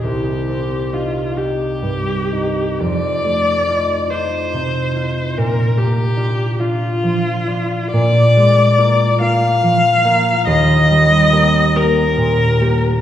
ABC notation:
X:1
M:6/8
L:1/8
Q:3/8=46
K:Bbmix
V:1 name="Viola"
G2 F G3 | d3 c3 | B G2 F3 | d3 f3 |
e3 B3 |]
V:2 name="Harp"
[C,,EG] C [EG] [EG] G,, [EG] | F,, =A, [EF] [EF] C, [EF] | B,, B, [DF] [DF] F, [DF] | B,, A, [B,F] [B,F] F, [B,F] |
E,, G, [B,G] [B,G] B,, [B,G] |]